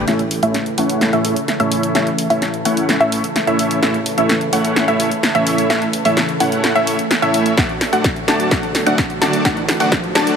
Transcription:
0.08 A1 C#3 E3 A3 C#4 E4 A4 C#5 E5, snare, closed hi-hat
0.19 closed hi-hat
0.31 open hi-hat
0.43 A1 A3 C#4 E4 C#5 E5, closed hi-hat
0.54 snare, closed hi-hat
0.66 closed hi-hat
0.78 A1 A3 C#4 E4 C#5 F#5, open hi-hat
0.90 closed hi-hat
1.01 snare, closed hi-hat
1.13 A1 A3 C#4 E4 C#5 E5, closed hi-hat
1.25 open hi-hat
1.36 closed hi-hat
1.48 snare, closed hi-hat
1.60 A1 A3 C#4 E4 C#5 E5, closed hi-hat
1.72 open hi-hat
1.83 closed hi-hat
1.95 A1 A3 C#4 E4 C#5 E5, snare, closed hi-hat
2.07 closed hi-hat
2.18 open hi-hat
2.30 A1 A3 C#4 E4 C#5 E5, open hi-hat
2.42 snare, closed hi-hat
2.54 closed hi-hat
2.65 A1 A3 C#4 E4 C#5 F#5, open hi-hat
2.77 closed hi-hat
2.89 snare, closed hi-hat
3.00 A1 A3 C#4 E4 C#5 E5, closed hi-hat
3.12 open hi-hat
3.24 closed hi-hat
3.36 snare, closed hi-hat
3.47 A1 A3 C#4 E4 C#5 E5, closed hi-hat
3.59 open hi-hat
3.71 closed hi-hat
3.82 A1 A3 C#4 E4 C#5 E5, snare, closed hi-hat
3.94 closed hi-hat
4.06 open hi-hat
4.18 A1 A3 C#4 E4 C#5 E5, closed hi-hat
4.29 snare, closed hi-hat
4.41 closed hi-hat
4.53 A1 A3 C#4 E4 C#5 F#5, open hi-hat
4.65 closed hi-hat
4.76 snare, closed hi-hat
4.88 A1 A3 C#4 E4 C#5 E5, closed hi-hat
5.00 open hi-hat
5.11 closed hi-hat
5.23 snare, closed hi-hat
5.35 A1 A3 C#4 E4 C#5 E5, closed hi-hat
5.47 open hi-hat
5.58 closed hi-hat
5.70 A1 A3 C#4 E4 C#5 E5, snare, closed hi-hat
5.82 closed hi-hat
5.93 open hi-hat
6.05 A1 A3 C#4 E4 C#5 E5, open hi-hat
6.17 snare, closed hi-hat
6.29 closed hi-hat
6.40 A1 A3 C#4 E4 C#5 F#5, open hi-hat
6.52 closed hi-hat
6.64 snare, closed hi-hat
6.75 A1 A3 C#4 E4 C#5 E5, closed hi-hat
6.87 open hi-hat
6.99 closed hi-hat
7.11 snare, closed hi-hat
7.22 A2 A3 C#4 E4 C#5 E5, closed hi-hat
7.34 open hi-hat
7.46 closed hi-hat
7.57 D3 F#3 F#4 F#5, kick, snare, closed hi-hat, riser
7.69 closed hi-hat
7.81 snare, open hi-hat
7.93 D2 A3 D4 F#4 D5 F#5, closed hi-hat
8.04 kick, snare, closed hi-hat
8.16 closed hi-hat
8.28 D2 A3 D4 F#4 D5 A5, snare, open hi-hat
8.40 closed hi-hat
8.51 D2 A3 D4 F#4 F#5, kick, snare, closed hi-hat
8.63 closed hi-hat
8.75 snare, open hi-hat
8.86 D2 A3 D4 F#4 D5 F#5, closed hi-hat
8.98 kick, snare, closed hi-hat
9.10 closed hi-hat
9.22 D2 A3 D4 F#4 D5 A5, snare, open hi-hat
9.33 closed hi-hat
9.45 D2 A3 D4 F#4 D5 F#5, kick, snare, closed hi-hat
9.57 closed hi-hat
9.68 snare, open hi-hat
9.80 D2 A3 D4 F#4 D5 F#5, open hi-hat
9.92 kick, snare, closed hi-hat
10.04 closed hi-hat
10.15 D2 A3 D4 F#4 D5 A5, snare, open hi-hat
10.27 closed hi-hat

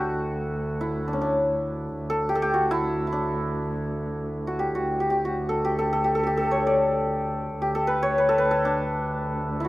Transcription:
Already playing: D2 D4 E4 F#4 A4
0.81 E4
1.08 D4
1.13 C#4
1.22 D4
1.95 D2
2.10 A4
2.29 G4
2.35 A4
2.42 G4
2.54 F#4
2.71 E4
3.07 E4
3.12 D4
4.47 F#4
4.59 G4
4.75 D2 F#4
5.00 G4
5.10 G4
5.25 F#4
5.49 A4
5.65 G4
5.79 A4
5.93 A4
6.04 G4
6.15 A4
6.23 G4 A4
6.37 A4
6.51 C#5
6.67 D5
7.56 D2
7.62 G4
7.75 A4
7.87 B4
8.03 C#5
8.18 B4
8.29 A4
8.38 B4
8.51 A4
8.65 D4
9.60 E4
9.65 F#4

